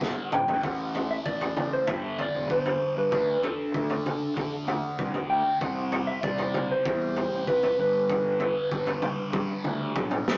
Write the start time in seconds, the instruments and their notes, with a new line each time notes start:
Already playing: distorted electric guitar G2 D3 G3, electric slide guitar F#5
0.01 fingered electric bass E1, kick, snare
0.32 fingered electric bass G1, electric slide guitar G5, mid tom
0.48 fingered electric bass A1, floor tom
0.63 fingered electric bass A1, distorted electric guitar A2 E3 A3, electric slide guitar F#5, kick, floor tom
0.95 floor tom
1.11 electric slide guitar E5
1.26 fingered electric bass A1, electric slide guitar D5, kick
1.41 floor tom
1.57 mid tom
1.73 electric slide guitar C5
1.87 fingered electric bass G1, distorted electric guitar G2 D3 G3, electric slide guitar E5, kick, floor tom
2.19 electric slide guitar D5, floor tom
2.34 fingered electric bass E1
2.50 fingered electric bass G1, electric slide guitar C5, kick
2.66 floor tom
2.97 fingered electric bass G2, electric slide guitar B4
3.12 fingered electric bass D2, distorted electric guitar D3 A3 D4, kick, floor tom
3.43 electric slide guitar A4, floor tom
3.74 fingered electric bass D2, electric slide guitar A4, kick
3.90 floor tom
4.06 mid tom
4.36 distorted electric guitar D3 A3 D4, fingered electric bass D3, kick, floor tom
4.67 fingered electric bass D2, electric slide guitar F#5, floor tom
4.98 fingered electric bass C2, kick
5.14 floor tom
5.29 fingered electric bass D2, electric slide guitar G5
5.61 fingered electric bass C2, distorted electric guitar C3 G3 C4, electric slide guitar F#5, kick, floor tom
5.92 floor tom
6.07 electric slide guitar E5
6.23 fingered electric bass C2, electric slide guitar D5, kick
6.38 floor tom
6.54 mid tom
6.72 electric slide guitar C5
6.85 fingered electric bass E2, distorted electric guitar C3 G3 C4, kick, floor tom
7.16 floor tom
7.32 fingered electric bass A1
7.47 fingered electric bass C2, electric slide guitar B4, kick
7.63 floor tom
7.78 fingered electric bass G1, distorted electric guitar G2 D3, electric slide guitar B4
7.82 distorted electric guitar G3
8.10 kick, floor tom
8.40 floor tom
8.71 fingered electric bass G1, kick
8.87 floor tom
9.02 distorted electric guitar G2 D3 G3, mid tom
9.33 fingered electric bass G2, kick, high tom
9.64 fingered electric bass D2, mid tom
9.96 fingered electric bass B1, kick, mid tom
10.11 mid tom
10.28 fingered electric bass A1, snare